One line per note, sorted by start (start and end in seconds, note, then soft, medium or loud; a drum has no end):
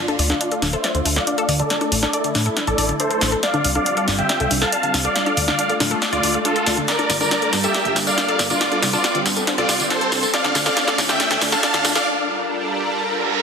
0.00 3.39 A3 medium
0.00 3.39 D4 medium
0.00 0.22 F4 medium
0.00 1.68 F4 medium
0.00 0.22 D5 loud
0.00 riser medium
0.08 0.12 A4 loud
0.08 closed hi-hat soft
0.08 high conga medium
0.19 0.33 D2 medium
0.19 0.29 D5 loud
0.19 open hi-hat loud
0.30 0.36 D3 medium
0.30 0.62 F4 medium
0.30 0.62 D5 medium
0.30 snare soft
0.30 closed hi-hat soft
0.30 high conga medium
0.41 0.45 D4 medium
0.41 closed hi-hat medium
0.52 0.58 A4 medium
0.52 closed hi-hat soft
0.62 0.76 D1 loud
0.62 0.69 D4 medium
0.62 snare soft
0.62 open hi-hat loud
0.62 high conga medium
0.73 0.77 A4 medium
0.73 1.05 C5 medium
0.73 1.05 E5 loud
0.73 closed hi-hat soft
0.84 0.94 D5 loud
0.84 snare soft
0.84 closed hi-hat medium
0.95 1.01 D2 medium
0.95 1.01 D3 medium
0.95 closed hi-hat soft
1.05 1.19 D2 loud
1.05 1.09 D4 medium
1.05 open hi-hat loud
1.16 1.23 A4 medium
1.16 1.49 D5 medium
1.16 1.49 F5 loud
1.16 snare soft
1.27 1.34 D4 medium
1.27 closed hi-hat medium
1.38 1.42 A4 loud
1.38 closed hi-hat soft
1.49 1.62 D2 medium
1.49 1.58 D5 loud
1.49 open hi-hat loud
1.59 1.66 D3 medium
1.59 1.92 A4 medium
1.59 1.92 D5 loud
1.59 closed hi-hat soft
1.70 1.74 D4 medium
1.70 3.41 E4 medium
1.70 snare medium
1.70 closed hi-hat medium
1.81 1.88 A4 medium
1.81 closed hi-hat soft
1.81 high conga medium
1.92 2.05 A1 loud
1.92 1.98 D4 medium
1.92 open hi-hat loud
2.03 2.27 A4 medium
2.03 2.07 A4 loud
2.03 2.27 D5 medium
2.03 snare soft
2.03 high conga medium
2.13 2.23 D5 loud
2.13 closed hi-hat medium
2.24 2.31 D3 medium
2.24 closed hi-hat soft
2.35 2.49 A2 loud
2.35 2.39 D4 medium
2.35 snare soft
2.35 open hi-hat loud
2.35 high conga medium
2.46 2.52 A4 medium
2.46 closed hi-hat soft
2.57 2.63 D4 medium
2.57 snare medium
2.57 closed hi-hat medium
2.67 2.74 A1 medium
2.67 2.71 A4 loud
2.67 2.92 A4 medium
2.67 2.92 D5 medium
2.67 closed hi-hat soft
2.78 2.92 A1 loud
2.78 2.88 D5 loud
2.78 open hi-hat loud
2.89 2.95 D3 medium
2.89 closed hi-hat soft
3.00 3.04 D4 medium
3.00 3.32 A4 medium
3.00 3.32 C5 medium
3.00 closed hi-hat medium
3.11 3.17 A4 medium
3.11 closed hi-hat soft
3.21 3.35 A1 medium
3.21 3.28 D4 medium
3.21 snare medium
3.21 open hi-hat loud
3.32 3.36 A4 loud
3.32 closed hi-hat soft
3.43 5.14 G3 medium
3.43 5.14 C4 medium
3.43 5.14 F4 loud
3.43 3.53 D5 loud
3.43 3.67 D5 medium
3.43 3.67 F5 loud
3.43 snare medium
3.43 closed hi-hat medium
3.54 3.60 D3 medium
3.54 closed hi-hat soft
3.54 high conga medium
3.64 3.78 C2 medium
3.64 3.68 D4 medium
3.64 open hi-hat loud
3.75 3.82 A4 medium
3.75 4.08 D5 medium
3.75 4.08 F5 loud
3.75 closed hi-hat soft
3.75 high conga medium
3.86 3.93 D4 medium
3.86 closed hi-hat medium
3.97 4.01 A4 loud
3.97 closed hi-hat soft
4.08 4.21 G1 loud
4.08 4.17 D5 loud
4.08 snare medium
4.08 open hi-hat loud
4.08 high conga medium
4.19 4.25 D3 medium
4.19 4.51 E5 medium
4.19 4.51 G5 loud
4.19 closed hi-hat soft
4.29 4.33 D4 medium
4.29 snare medium
4.29 closed hi-hat medium
4.40 4.47 C2 loud
4.40 4.47 A4 medium
4.40 closed hi-hat soft
4.51 4.64 C2 loud
4.51 4.57 D4 medium
4.51 open hi-hat loud
4.62 4.66 A4 loud
4.62 4.94 F5 medium
4.62 4.94 A5 medium
4.62 snare medium
4.62 closed hi-hat soft
4.72 4.82 D5 loud
4.72 closed hi-hat medium
4.83 4.90 D3 medium
4.83 closed hi-hat soft
4.94 5.08 C2 medium
4.94 4.98 D4 medium
4.94 snare medium
4.94 open hi-hat loud
5.05 5.11 A4 medium
5.05 5.37 D5 medium
5.05 5.37 F5 medium
5.05 closed hi-hat soft
5.15 6.86 A3 medium
5.15 6.86 D4 medium
5.15 5.22 D4 medium
5.15 6.86 F4 loud
5.15 snare medium
5.15 closed hi-hat medium
5.26 5.30 A4 loud
5.26 closed hi-hat soft
5.26 high conga medium
5.37 5.51 D2 loud
5.37 5.47 D5 loud
5.37 open hi-hat loud
5.48 5.54 D3 medium
5.48 5.72 D5 medium
5.48 5.72 F5 medium
5.48 snare medium
5.48 closed hi-hat soft
5.48 high conga medium
5.59 5.63 D4 medium
5.59 closed hi-hat medium
5.69 5.76 A4 medium
5.69 closed hi-hat soft
5.80 5.94 D1 medium
5.80 5.87 D4 medium
5.80 snare medium
5.80 open hi-hat loud
5.80 high conga medium
5.91 5.95 A4 loud
5.91 closed hi-hat soft
6.02 6.12 D5 loud
6.02 snare medium
6.02 closed hi-hat medium
6.13 6.19 D2 medium
6.13 6.19 D3 medium
6.13 6.37 F4 medium
6.13 6.37 D5 loud
6.13 closed hi-hat soft
6.23 6.37 D2 medium
6.23 6.27 D4 medium
6.23 open hi-hat loud
6.34 6.41 A4 medium
6.34 closed hi-hat soft
6.45 6.52 D4 medium
6.45 6.77 F4 medium
6.45 6.77 A4 medium
6.45 closed hi-hat medium
6.56 6.60 A4 loud
6.56 closed hi-hat soft
6.66 6.80 D2 medium
6.66 6.76 D5 loud
6.66 snare medium
6.66 open hi-hat loud
6.77 6.84 D3 medium
6.77 closed hi-hat soft
6.88 8.59 G3 medium
6.88 6.95 D4 medium
6.88 8.59 D4 medium
6.88 13.42 F4 medium
6.88 8.59 A#4 medium
6.88 7.12 A#4 medium
6.88 7.12 D5 loud
6.88 8.59 A5 medium
6.88 snare medium
6.88 closed hi-hat medium
6.88 tambourine soft
6.99 7.03 A4 loud
6.99 closed hi-hat soft
6.99 high conga medium
7.10 7.23 G1 loud
7.10 7.20 D5 loud
7.10 snare medium
7.10 open hi-hat loud
7.10 tambourine medium
7.20 7.27 D3 medium
7.20 7.53 A#4 medium
7.20 7.53 D5 loud
7.20 closed hi-hat soft
7.20 tambourine soft
7.20 high conga medium
7.31 7.35 D4 medium
7.31 snare medium
7.31 closed hi-hat medium
7.42 7.49 A4 medium
7.42 closed hi-hat soft
7.53 7.67 G2 loud
7.53 7.59 D4 medium
7.53 snare medium
7.53 open hi-hat loud
7.53 tambourine medium
7.53 high conga medium
7.64 7.96 G4 medium
7.64 7.68 A4 loud
7.64 7.96 E5 loud
7.64 closed hi-hat soft
7.64 tambourine soft
7.74 7.84 D5 loud
7.74 snare medium
7.74 closed hi-hat medium
7.74 tambourine soft
7.85 7.92 G1 medium
7.85 7.92 D3 medium
7.85 closed hi-hat soft
7.96 8.10 G1 loud
7.96 8.00 D4 medium
7.96 snare medium
7.96 open hi-hat loud
7.96 tambourine medium
8.07 8.13 A4 medium
8.07 8.39 D5 medium
8.07 8.39 F5 loud
8.07 closed hi-hat soft
8.07 tambourine soft
8.18 8.24 D4 medium
8.18 snare medium
8.18 closed hi-hat medium
8.18 tambourine soft
8.28 8.32 A4 loud
8.28 closed hi-hat soft
8.39 8.53 G1 medium
8.39 8.49 D5 loud
8.39 snare medium
8.39 open hi-hat loud
8.39 tambourine medium
8.50 8.57 D3 medium
8.50 8.82 F4 medium
8.50 8.82 D5 medium
8.50 closed hi-hat soft
8.50 tambourine soft
8.61 10.32 G3 medium
8.61 10.32 C4 medium
8.61 8.65 D4 medium
8.61 snare medium
8.61 closed hi-hat medium
8.61 tambourine soft
8.72 8.78 A4 medium
8.72 closed hi-hat soft
8.72 high conga medium
8.82 8.96 C2 loud
8.82 8.89 D4 medium
8.82 snare medium
8.82 open hi-hat loud
8.82 tambourine medium
8.93 9.18 F4 medium
8.93 8.97 A4 loud
8.93 9.18 D5 medium
8.93 closed hi-hat soft
8.93 tambourine soft
8.93 high conga medium
9.04 9.14 D5 loud
9.04 snare medium
9.04 closed hi-hat medium
9.04 tambourine soft
9.15 9.21 D3 medium
9.15 closed hi-hat soft
9.26 9.39 G1 loud
9.26 9.30 D4 medium
9.26 snare medium
9.26 open hi-hat loud
9.26 tambourine medium
9.26 high conga medium
9.36 9.43 A4 medium
9.36 closed hi-hat soft
9.36 tambourine soft
9.47 9.54 D4 medium
9.47 snare medium
9.47 closed hi-hat medium
9.47 tambourine soft
9.58 9.65 C2 medium
9.58 9.82 F4 medium
9.58 9.62 A4 loud
9.58 9.82 D5 medium
9.58 closed hi-hat soft
9.69 9.82 C2 loud
9.69 9.79 D5 loud
9.69 snare medium
9.69 open hi-hat loud
9.69 tambourine medium
9.80 9.86 D3 medium
9.80 closed hi-hat soft
9.80 tambourine soft
9.90 9.94 D4 medium
9.90 10.23 A4 medium
9.90 10.23 C5 loud
9.90 snare medium
9.90 closed hi-hat medium
10.01 10.08 A4 medium
10.01 closed hi-hat soft
10.12 10.26 C2 medium
10.12 10.19 D4 medium
10.12 snare medium
10.12 open hi-hat loud
10.12 tambourine medium
10.23 10.27 A4 loud
10.23 closed hi-hat soft
10.23 tambourine soft
10.34 12.05 A3 medium
10.34 12.04 D4 medium
10.34 10.43 D5 loud
10.34 10.58 D5 medium
10.34 10.58 F5 loud
10.34 snare medium
10.34 closed hi-hat loud
10.34 tambourine soft
10.44 10.51 D3 medium
10.44 snare medium
10.44 closed hi-hat soft
10.44 high conga medium
10.55 10.69 D2 loud
10.55 10.59 D4 medium
10.55 snare medium
10.55 open hi-hat loud
10.55 tambourine medium
10.66 10.72 A4 medium
10.66 10.98 D5 medium
10.66 10.98 F5 medium
10.66 snare medium
10.66 closed hi-hat soft
10.66 tambourine soft
10.66 high conga medium
10.77 10.83 D4 medium
10.77 snare medium
10.77 closed hi-hat loud
10.77 tambourine soft
10.88 10.91 A4 loud
10.88 snare medium
10.88 closed hi-hat soft
10.98 11.12 D1 loud
10.98 11.08 D5 loud
10.98 snare medium
10.98 open hi-hat loud
10.98 tambourine medium
10.98 high conga medium
11.09 11.16 D3 medium
11.09 11.41 E5 medium
11.09 11.41 G5 loud
11.09 snare medium
11.09 closed hi-hat soft
11.09 tambourine soft
11.20 11.24 D4 medium
11.20 snare loud
11.20 closed hi-hat loud
11.20 tambourine soft
11.31 11.37 D2 medium
11.31 11.37 A4 medium
11.31 snare medium
11.31 closed hi-hat soft
11.41 11.55 D2 loud
11.41 11.48 D4 medium
11.41 snare loud
11.41 open hi-hat loud
11.41 tambourine medium
11.52 11.56 A4 loud
11.52 11.85 F5 medium
11.52 11.85 A5 loud
11.52 snare medium
11.52 closed hi-hat soft
11.52 tambourine soft
11.63 11.73 D5 loud
11.63 snare loud
11.63 closed hi-hat loud
11.63 tambourine soft
11.74 11.80 D3 medium
11.74 snare medium
11.74 closed hi-hat soft
11.85 11.98 D2 medium
11.85 11.89 D4 medium
11.85 snare loud
11.85 open hi-hat loud
11.85 tambourine medium
11.95 12.02 A4 medium
11.95 12.06 D5 medium
11.95 12.06 F5 medium
11.95 snare medium
11.95 closed hi-hat soft
11.95 tambourine soft
12.06 13.42 G3 medium
12.06 13.42 D4 medium
12.06 13.42 A4 medium
12.06 13.42 A#4 medium
12.92 reverse cymbal medium